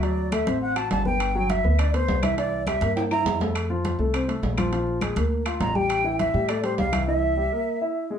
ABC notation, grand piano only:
X:1
M:4/4
L:1/8
Q:1/4=204
K:C
V:1 name="Grand piano"
[^F,^F]2 [A,A] [Cc]2 [F^f]2 [B,B]- | [B,B] [^F,^F]2 [B,B] [Dd] [B,B]2 [E,E] | [E,E]2 [G,G] [_B,_B]2 [Ee]2 [A,A]- | [A,A] [F,F]2 [A,A] [Cc] [A,A]2 [F,F] |
[F,F]2 [_A,_A] [_B,_B]2 [Ff]2 [G,G]- | [G,G] [E,E]2 [G,G] [A,A] [G,G]2 [E,E] | [E,E]2 [G,G] [_B,_B]2 [Ee]2 [_A,_A] |]